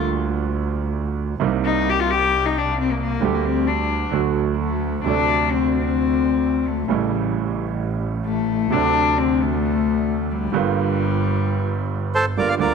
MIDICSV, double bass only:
0, 0, Header, 1, 2, 480
1, 0, Start_track
1, 0, Key_signature, -2, "minor"
1, 0, Tempo, 457317
1, 1482, Time_signature, 4, 2, 24, 8
1, 13375, End_track
2, 0, Start_track
2, 0, Title_t, "Double bass"
2, 0, Program_c, 0, 43
2, 0, Note_on_c, 0, 38, 73
2, 1386, Note_off_c, 0, 38, 0
2, 1485, Note_on_c, 0, 36, 78
2, 3290, Note_off_c, 0, 36, 0
2, 3388, Note_on_c, 0, 38, 73
2, 4293, Note_off_c, 0, 38, 0
2, 4339, Note_on_c, 0, 38, 75
2, 5259, Note_off_c, 0, 38, 0
2, 5301, Note_on_c, 0, 38, 70
2, 7144, Note_off_c, 0, 38, 0
2, 7241, Note_on_c, 0, 33, 73
2, 9061, Note_off_c, 0, 33, 0
2, 9163, Note_on_c, 0, 38, 79
2, 10969, Note_off_c, 0, 38, 0
2, 11066, Note_on_c, 0, 31, 80
2, 12905, Note_off_c, 0, 31, 0
2, 12992, Note_on_c, 0, 31, 48
2, 13200, Note_off_c, 0, 31, 0
2, 13232, Note_on_c, 0, 38, 77
2, 13375, Note_off_c, 0, 38, 0
2, 13375, End_track
0, 0, End_of_file